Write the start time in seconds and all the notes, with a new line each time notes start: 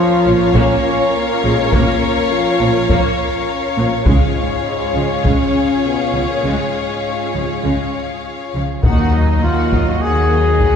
Already playing: F3 C#4 F4 A#4 C#5 F5
0.25 A#1 A#2 F3
0.54 A#1 A#2 A#3 C#4 C#5, taiko
1.14 A#3 A#4
1.43 A#1 A#2 F3 G#3 G#4
1.60 G#3 G#4
1.72 A#1 A#2 A#3 A#4, taiko
2.31 F3 F4
2.60 A#1 A#2 F3
2.89 A#1 A#2 A#3, taiko
3.77 A#1 A#2 F3
4.05 C#2 G#2 C#3 G#3 C#4 F4 G#4 C#5 F5, taiko
4.94 C#2 C#3 F3
5.24 C#2 C#3 G#3 C#4, taiko
5.83 B2 B3
6.14 C#2 C#3 F3
6.28 A#2 A#3
6.44 C#2 G#2 C#3 G#3
7.34 C#2 C#3 F3
7.63 C#2 C#3 G#3
8.54 C#2 C#3 F3
8.83 D#2 D#3 F#3 A#3 D#4 F#4 F#5, taiko
9.13 F#3 D#4 D#5
9.43 D#2 D#3 F4 F#4 F#5
9.72 F#3 D#4 D#5, taiko
9.88 F#4
10.02 D#2 D#3 F#4 G#4 F#5
10.31 F#3 D#4 D#5
10.60 D#2 D#3 F#4 F#5, taiko